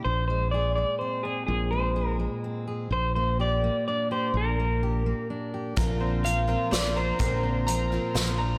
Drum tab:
HH |------|------|------|------|
SD |------|------|------|------|
BD |------|------|------|------|

HH |x-x-x-|x-x-x-|
SD |----o-|----o-|
BD |o-----|o-----|